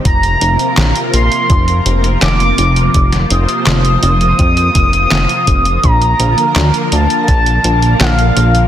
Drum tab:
HH |xxxxxxxxxxxxxxxx|xxxxxxxxxxxxxxxx|xxxxxxxxxxxxxxxx|
CP |----x-------x---|----x-------x---|----x-------x---|
SD |----o-------o---|-o--o-------o---|----o-------o---|
BD |o-------o-------|o-------o-o---o-|o-------o-------|